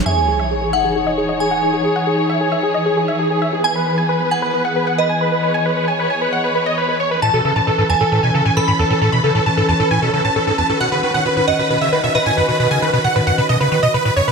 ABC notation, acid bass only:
X:1
M:4/4
L:1/16
Q:1/4=134
K:C#m
V:1 name="Acid bass" clef=bass
z16 | z16 | z16 | z16 |
A,, B,, C, A,, A,, G,, E,, A,, A,, B,, C, A,, A,, G,, E,, A,, | A,, B,, C, A,, A,, G,, E,, A,, A,, B,, C, A,, A,, G,, E,, A,, | B,, C, D, B,, B,, A,, F,, B,, B,, C, D, B,, B,, A,, F,, B,, | B,, C, D, B,, B,, A,, F,, B,, B,, C, D, B,, B,, A,, F,, B,, |]